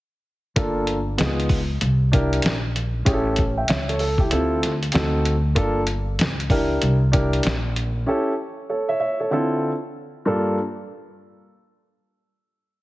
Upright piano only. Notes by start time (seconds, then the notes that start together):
0.56 A#3 D4 F4 A4
1.18 B3 D#4 F4 G#4
2.12 D4 E4 G4 A#4
3.05 C#4 E4 G4 G#4
3.14 A4
3.57 E5 G5
3.69 C#5 E5
3.89 A4 C#5
4.00 A4
4.20 E4 G4
4.30 C4 E4 F4 A4
4.93 C4 D#4 F#4 A4
5.55 A#3 D4 F4 A4
6.50 D4 E4 G4 A#4
7.12 D4 E4 G4 A#4
8.06 C#4 E4 G4 A4
8.69 A4 C#5
8.89 C#5 E5
9.00 C#5 E5
9.20 A4 C#5
9.31 D3 C4 E4 F4 A4
10.25 G2 A#3 D4 F4 A4